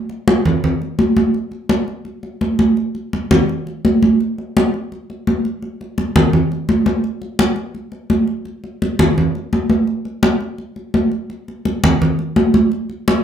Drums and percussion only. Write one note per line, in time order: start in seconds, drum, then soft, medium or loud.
0.09 high conga soft
0.28 high conga loud
0.45 low conga medium
0.64 high conga soft
0.64 low conga medium
0.82 high conga soft
0.99 high conga medium
1.17 high conga medium
1.34 high conga soft
1.51 high conga soft
1.69 high conga medium
1.88 high conga soft
2.05 high conga soft
2.23 high conga soft
2.41 high conga medium
2.59 high conga medium
2.77 high conga soft
2.95 high conga soft
3.13 high conga medium
3.31 high conga loud
3.31 low conga medium
3.49 high conga soft
3.67 high conga soft
3.85 high conga medium
4.02 high conga medium
4.20 high conga soft
4.38 high conga soft
4.57 high conga loud
4.74 high conga soft
4.92 high conga soft
5.10 high conga soft
5.27 high conga medium
5.45 high conga soft
5.62 high conga soft
5.81 high conga soft
5.98 high conga medium
6.16 high conga loud
6.16 low conga medium
6.33 high conga soft
6.33 low conga medium
6.52 high conga soft
6.69 high conga medium
6.86 high conga medium
7.04 high conga soft
7.22 high conga soft
7.39 high conga loud
7.56 high conga soft
7.75 high conga soft
7.92 high conga soft
8.10 high conga medium
8.27 high conga soft
8.45 high conga soft
8.64 high conga soft
8.82 high conga medium
8.99 high conga loud
8.99 low conga medium
9.18 high conga soft
9.18 low conga medium
9.35 high conga soft
9.53 high conga medium
9.70 high conga medium
9.87 high conga soft
10.05 high conga soft
10.23 high conga loud
10.41 high conga soft
10.58 high conga soft
10.76 high conga soft
10.94 high conga medium
11.12 high conga soft
11.30 high conga soft
11.48 high conga soft
11.65 high conga medium
11.84 high conga loud
11.84 low conga medium
12.02 high conga soft
12.02 low conga medium
12.19 high conga soft
12.36 high conga loud
12.54 high conga medium
12.72 high conga soft
12.90 high conga soft
13.08 high conga loud